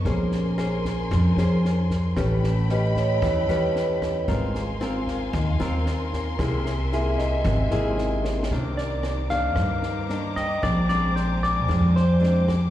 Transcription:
0.04 1.07 A#1 loud
0.04 1.08 A#3 medium
0.04 0.54 C#4 medium
0.04 0.54 G#4 medium
0.04 2.14 A#4 medium
0.04 0.55 C5 medium
0.04 2.14 G#5 medium
0.04 2.14 C6 medium
0.04 kick medium
0.04 snare soft
0.32 snare soft
0.58 1.33 C#4 medium
0.58 1.33 G#4 medium
0.58 1.33 C5 medium
0.58 cross-stick medium
0.58 snare soft
0.85 kick soft
0.85 snare soft
1.11 1.36 F2 loud
1.11 2.14 F3 medium
1.11 kick medium
1.11 cross-stick medium
1.11 snare soft
1.36 2.12 F2 medium
1.36 2.13 C#4 medium
1.36 2.13 G#4 medium
1.36 2.13 C5 medium
1.36 snare soft
1.65 snare soft
1.90 kick soft
1.90 snare soft
2.16 3.18 A1 loud
2.16 3.19 A3 soft
2.16 2.51 C#4 medium
2.16 2.51 G4 medium
2.16 4.26 A4 medium
2.16 2.51 B4 medium
2.16 4.25 G5 medium
2.16 4.25 B5 loud
2.16 kick medium
2.16 cross-stick medium
2.16 snare soft
2.44 snare soft
2.69 3.45 C#4 medium
2.69 3.45 G4 medium
2.69 3.45 B4 medium
2.69 2.95 D#5 medium
2.69 snare soft
2.96 3.21 C#5 medium
2.96 kick soft
2.96 snare soft
3.22 3.47 E2 loud
3.22 4.25 E3 medium
3.22 kick medium
3.22 cross-stick medium
3.22 snare soft
3.49 4.24 E2 medium
3.49 4.24 C#4 medium
3.49 4.24 G4 medium
3.49 4.24 B4 medium
3.49 snare soft
3.76 snare soft
4.02 kick soft
4.02 cross-stick medium
4.02 snare soft
4.27 5.29 G#1 medium
4.27 5.31 G#3 medium
4.27 4.62 C4 medium
4.27 4.62 F4 medium
4.27 8.47 A#4 medium
4.27 4.62 A#4 medium
4.27 6.37 F5 medium
4.27 6.37 G#5 medium
4.27 8.47 C6 medium
4.27 kick medium
4.27 snare soft
4.55 snare soft
4.81 5.33 C4 medium
4.81 5.33 F4 medium
4.81 5.33 A#4 medium
4.81 cross-stick medium
4.81 snare soft
5.07 kick soft
5.07 snare soft
5.33 5.58 D#2 loud
5.33 6.37 D#3 medium
5.33 kick medium
5.33 cross-stick medium
5.33 snare soft
5.60 6.35 D#2 medium
5.60 6.35 C4 medium
5.60 6.35 F4 medium
5.60 6.35 A#4 medium
5.60 snare soft
5.86 snare soft
6.13 kick soft
6.13 snare soft
6.39 7.41 C2 loud
6.39 7.42 C3 medium
6.39 6.73 A#3 medium
6.39 6.73 E4 medium
6.39 6.73 G#4 medium
6.39 8.48 E5 medium
6.39 8.48 G#5 medium
6.39 kick medium
6.39 cross-stick medium
6.39 snare soft
6.66 snare soft
6.93 7.45 A#3 medium
6.93 7.45 E4 medium
6.93 7.45 G#4 medium
6.93 7.18 E5 medium
6.93 snare soft
7.17 7.33 D#5 medium
7.17 kick soft
7.17 snare soft
7.45 7.69 G#1 loud
7.45 8.48 C3 soft
7.45 kick medium
7.45 cross-stick medium
7.45 snare soft
7.71 8.47 G#1 medium
7.71 8.46 A#3 medium
7.71 8.47 E4 medium
7.71 8.47 G#4 medium
7.71 snare soft
7.98 snare soft
8.25 snare soft
8.43 snare medium
8.50 9.57 C2 medium
8.50 9.54 C3 medium
8.50 9.26 D#3 soft
8.50 9.26 A#3 medium
8.50 9.27 D4 medium
8.50 12.70 C5 medium
8.50 12.70 A#5 medium
8.50 12.70 D6 medium
8.50 kick medium
8.50 snare soft
8.76 9.90 D5 soft
8.76 9.32 D5 medium
8.76 snare soft
9.03 cross-stick medium
9.03 snare soft
9.30 10.05 D#3 medium
9.30 10.06 A#3 medium
9.30 10.05 D4 medium
9.30 10.06 F5 loud
9.30 kick soft
9.30 snare soft
9.56 10.60 G2 soft
9.56 10.59 G2 loud
9.56 kick medium
9.56 cross-stick medium
9.56 snare soft
9.83 snare soft
10.09 10.45 D#3 soft
10.09 10.45 A#3 medium
10.09 10.46 D4 medium
10.09 snare soft
10.36 10.63 D#5 loud
10.36 10.85 G5 medium
10.36 kick soft
10.36 snare soft
10.62 11.69 A#1 medium
10.62 11.66 A#2 medium
10.62 10.78 G#3 soft
10.62 10.78 C4 medium
10.62 10.78 D4 medium
10.62 10.88 D5 loud
10.62 12.70 G#5 medium
10.62 kick medium
10.62 cross-stick medium
10.62 snare soft
10.89 11.64 G#3 medium
10.89 11.64 C4 medium
10.89 11.65 D4 medium
10.89 11.14 D5 medium
10.89 snare soft
11.16 11.43 C5 medium
11.16 snare soft
11.43 11.97 D5 loud
11.43 kick soft
11.43 snare soft
11.68 12.70 F2 loud
11.68 12.70 F3 medium
11.68 12.02 G#3 soft
11.68 12.02 C4 medium
11.68 12.03 D4 medium
11.68 kick medium
11.68 cross-stick medium
11.68 snare soft
11.96 12.45 C5 medium
11.96 snare soft
12.20 12.55 G#3 soft
12.20 12.55 C4 soft
12.20 12.55 D4 medium
12.20 snare soft
12.48 kick soft
12.48 cross-stick medium
12.48 snare soft

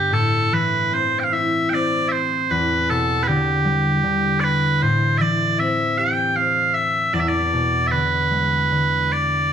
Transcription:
0.00 0.16 G2 medium
0.00 0.16 D3 soft
0.00 0.97 B3 soft
0.00 1.64 D4 soft
0.00 0.13 G4 medium
0.11 2.55 A2 medium
0.11 0.54 A4 medium
0.52 2.55 E3 soft
0.52 0.94 B4 medium
0.91 1.71 C4 soft
0.91 1.19 C5 medium
1.19 1.24 G5 soft
1.24 1.33 F5 soft
1.32 3.93 E4 soft
1.32 1.69 E5 medium
1.70 2.96 C4 soft
1.70 1.74 G5 medium
1.74 2.08 D5 medium
2.08 2.51 C5 medium
2.08 2.12 E5 medium
2.51 4.87 E2 medium
2.51 2.90 B4 medium
2.90 3.33 B2 soft
2.90 3.23 A4 medium
3.23 3.27 B4 medium
3.27 4.02 D3 soft
3.27 4.40 G4 medium
3.65 4.09 G3 soft
4.03 4.87 D3 soft
4.40 4.82 B4 medium
4.40 4.44 D5 medium
4.82 7.18 A2 soft
4.82 5.18 C5 medium
5.18 7.18 E3 soft
5.18 5.59 D5 medium
5.18 5.21 E5 medium
5.59 6.36 C4 soft
5.59 5.98 E5 medium
5.98 8.37 G4 soft
5.98 6.36 G5 medium
6.36 7.59 C4 soft
6.36 6.74 F5 medium
6.74 7.13 E5 medium
7.13 9.53 E2 soft
7.13 7.19 D5 medium
7.19 7.28 E5 medium
7.28 7.87 D5 medium
7.53 7.97 B2 soft
7.87 7.91 E5 medium
7.91 8.70 D3 soft
7.91 9.12 B4 medium
8.31 8.76 G#3 soft
8.71 9.53 D3 soft
9.12 9.53 D5 medium

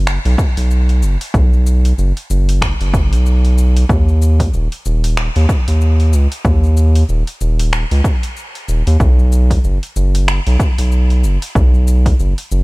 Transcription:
0.00 0.18 F#1 medium
0.07 finger snap medium
0.07 cabasa soft
0.25 0.35 B1 loud
0.25 open hi-hat soft
0.25 cabasa soft
0.38 kick loud
0.38 cabasa medium
0.57 1.04 B1 medium
0.57 open hi-hat medium
0.57 cabasa soft
0.71 cabasa soft
0.89 open hi-hat soft
0.89 cabasa soft
1.02 1.17 F#1 medium
1.02 cabasa medium
1.21 open hi-hat medium
1.21 cabasa soft
1.34 1.93 B1 loud
1.34 kick loud
1.34 cabasa soft
1.53 cabasa soft
1.67 cabasa medium
1.85 open hi-hat soft
1.85 cabasa soft
1.98 2.12 F#1 medium
1.98 cabasa soft
2.17 open hi-hat soft
2.17 cabasa soft
2.30 2.74 F#1 medium
2.30 cabasa medium
2.49 open hi-hat medium
2.49 cabasa soft
2.62 finger snap medium
2.62 kick medium
2.62 cabasa soft
2.81 3.14 F#1 medium
2.81 open hi-hat soft
2.81 cabasa soft
2.94 kick loud
2.94 cabasa medium
3.12 3.85 B1 loud
3.12 open hi-hat medium
3.12 cabasa soft
3.26 cabasa soft
3.45 open hi-hat soft
3.45 cabasa soft
3.58 cabasa medium
3.77 open hi-hat medium
3.77 cabasa soft
3.89 4.48 D#2 loud
3.89 kick loud
3.89 cabasa soft
4.08 cabasa soft
4.22 cabasa medium
4.40 kick medium
4.40 open hi-hat medium
4.40 cabasa soft
4.54 4.68 D#1 medium
4.54 cabasa soft
4.72 open hi-hat soft
4.72 cabasa soft
4.85 5.29 D#1 medium
4.85 cabasa medium
5.04 open hi-hat medium
5.04 cabasa soft
5.17 finger snap medium
5.17 cabasa soft
5.36 5.46 D#2 loud
5.36 open hi-hat soft
5.36 cabasa soft
5.49 kick loud
5.49 cabasa medium
5.68 6.15 D#2 medium
5.68 open hi-hat medium
5.68 cabasa soft
5.81 cabasa soft
6.00 open hi-hat soft
6.00 cabasa soft
6.13 6.27 C#2 medium
6.13 cabasa medium
6.32 open hi-hat medium
6.32 cabasa soft
6.45 7.04 D#2 loud
6.45 kick loud
6.45 cabasa soft
6.64 cabasa soft
6.77 cabasa medium
6.95 open hi-hat medium
6.95 cabasa soft
7.09 7.23 D#1 medium
7.09 cabasa soft
7.27 open hi-hat soft
7.27 cabasa soft
7.41 7.84 D#1 medium
7.41 cabasa medium
7.59 open hi-hat medium
7.59 cabasa soft
7.73 finger snap medium
7.73 cabasa soft
7.91 8.01 C#2 medium
7.91 open hi-hat soft
7.91 cabasa soft
8.04 kick loud
8.04 cabasa medium
8.23 open hi-hat medium
8.23 cabasa soft
8.37 cabasa soft
8.55 open hi-hat soft
8.55 cabasa soft
8.68 8.83 D#1 medium
8.68 cabasa medium
8.87 8.97 D#2 medium
8.87 open hi-hat medium
8.87 cabasa soft
9.00 9.59 B1 loud
9.00 kick loud
9.00 cabasa soft
9.19 cabasa soft
9.32 cabasa medium
9.51 kick medium
9.51 open hi-hat medium
9.51 cabasa soft
9.64 9.78 F#1 medium
9.64 cabasa soft
9.83 open hi-hat soft
9.83 cabasa soft
9.96 10.40 F#1 medium
9.96 cabasa medium
10.15 open hi-hat medium
10.15 cabasa soft
10.28 finger snap medium
10.28 cabasa soft
10.47 10.57 B1 loud
10.47 open hi-hat soft
10.47 cabasa soft
10.60 kick loud
10.60 cabasa medium
10.78 11.25 B1 medium
10.78 open hi-hat medium
10.78 cabasa soft
10.92 cabasa soft
11.10 open hi-hat soft
11.10 cabasa soft
11.24 11.38 F#1 medium
11.24 cabasa medium
11.42 open hi-hat medium
11.42 cabasa soft
11.55 12.14 B1 loud
11.55 kick loud
11.55 cabasa soft
11.74 cabasa soft
11.88 cabasa medium
12.06 kick medium
12.06 open hi-hat medium
12.06 cabasa soft
12.19 12.34 F#1 medium
12.19 cabasa soft
12.38 open hi-hat soft
12.38 cabasa soft
12.51 12.63 F#1 medium
12.51 cabasa medium

